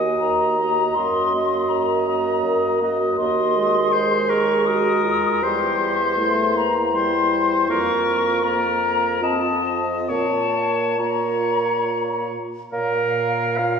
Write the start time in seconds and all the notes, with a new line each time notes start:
Already playing: D#2 A#3 F#4 D#5 G#5
0.19 D#2 A#5
0.59 A#3 F#4 D#5
0.94 F#2 F#4 D#5 C6
0.98 A#3
1.34 A#3 F#4 D#5
1.68 F#2 A#5
2.07 A#3 F#4 D#5
2.44 F#2
2.81 A#3 F#4 D#5
3.17 D#2 A#3 F#4 D#5 C6
3.56 G#3
3.93 G#4 C5
4.29 A#4 C#6
4.66 F#4 A#4 D#6
5.04 F4
5.42 E2 G3 G4 C5 C6
5.80 G4
6.17 A3 E4
6.54 A#3 A#5
6.92 G3 E4 C5 C6
7.68 F2 A#3 F4 A#4 C#6
8.43 A#3 F4 A#4 A#5
9.22 C4 F4 D#5 A5
10.09 A#2 A#3 F4 C#5 A5
10.99 A#3 F4 C#5 A#5
12.72 A#2 A#3 A#4 C#5 F5
13.57 F4 F5